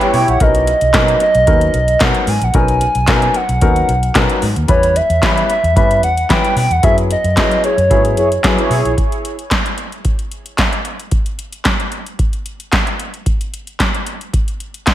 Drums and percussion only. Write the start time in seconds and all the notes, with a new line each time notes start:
0.01 closed hi-hat
0.14 open hi-hat
0.28 closed hi-hat
0.40 kick, closed hi-hat
0.55 closed hi-hat
0.67 closed hi-hat
0.81 closed hi-hat
0.94 kick, snare, clap, closed hi-hat
1.08 closed hi-hat
1.20 closed hi-hat
1.35 closed hi-hat
1.47 kick, closed hi-hat
1.61 closed hi-hat
1.74 closed hi-hat
1.88 closed hi-hat
2.00 kick, snare, clap, closed hi-hat
2.15 closed hi-hat
2.27 open hi-hat
2.41 closed hi-hat
2.54 kick, closed hi-hat
2.68 closed hi-hat
2.81 closed hi-hat
2.95 closed hi-hat
3.07 kick, snare, clap, closed hi-hat
3.22 closed hi-hat
3.34 closed hi-hat
3.49 closed hi-hat
3.61 kick, closed hi-hat
3.76 closed hi-hat
3.89 closed hi-hat
4.03 closed hi-hat
4.15 kick, snare, clap, closed hi-hat
4.29 closed hi-hat
4.42 open hi-hat
4.56 closed hi-hat
4.68 kick, closed hi-hat
4.83 closed hi-hat
4.96 closed hi-hat
5.10 closed hi-hat
5.23 kick, snare, clap, closed hi-hat
5.37 closed hi-hat
5.50 closed hi-hat
5.64 closed hi-hat
5.76 kick, closed hi-hat
5.91 closed hi-hat
6.03 closed hi-hat
6.17 closed hi-hat
6.30 kick, snare, clap, closed hi-hat
6.44 closed hi-hat
6.57 open hi-hat
6.71 closed hi-hat
6.83 kick, closed hi-hat
6.98 closed hi-hat
7.11 closed hi-hat
7.24 closed hi-hat
7.37 kick, snare, clap, closed hi-hat
7.51 closed hi-hat
7.64 closed hi-hat
7.78 closed hi-hat
7.91 kick, closed hi-hat
8.05 closed hi-hat
8.17 closed hi-hat
8.32 closed hi-hat
8.44 kick, snare, clap, closed hi-hat
8.58 closed hi-hat
8.71 open hi-hat
8.85 closed hi-hat
8.98 kick, closed hi-hat
9.12 closed hi-hat
9.25 closed hi-hat
9.39 closed hi-hat
9.51 kick, snare, clap, closed hi-hat
9.66 closed hi-hat
9.78 closed hi-hat
9.92 closed hi-hat
10.05 kick, closed hi-hat
10.19 closed hi-hat
10.31 closed hi-hat
10.46 closed hi-hat
10.58 kick, snare, clap, closed hi-hat
10.73 closed hi-hat
10.85 closed hi-hat
11.00 closed hi-hat
11.11 kick, closed hi-hat
11.26 closed hi-hat
11.39 closed hi-hat
11.52 closed hi-hat
11.65 kick, snare, clap, closed hi-hat
11.80 closed hi-hat
11.92 closed hi-hat
12.06 closed hi-hat
12.19 kick, closed hi-hat
12.33 closed hi-hat
12.46 closed hi-hat
12.60 closed hi-hat
12.72 kick, snare, clap, closed hi-hat
12.87 closed hi-hat
13.00 closed hi-hat
13.14 closed hi-hat
13.26 kick, closed hi-hat
13.41 closed hi-hat
13.54 closed hi-hat
13.67 closed hi-hat
13.80 kick, snare, clap, closed hi-hat
13.95 closed hi-hat
14.06 closed hi-hat
14.21 closed hi-hat
14.33 kick, closed hi-hat
14.48 closed hi-hat
14.60 closed hi-hat
14.74 closed hi-hat
14.87 kick, snare, clap, closed hi-hat